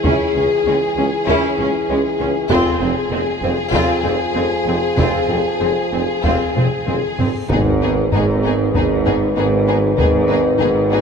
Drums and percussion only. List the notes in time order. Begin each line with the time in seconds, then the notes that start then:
0.04 taiko
1.27 taiko
2.50 taiko
3.73 taiko
4.98 taiko
6.24 taiko
6.57 taiko low-mid
6.88 taiko mid
7.19 taiko low
7.50 taiko
8.12 taiko low
8.75 taiko
9.06 taiko low
9.98 taiko
10.60 taiko low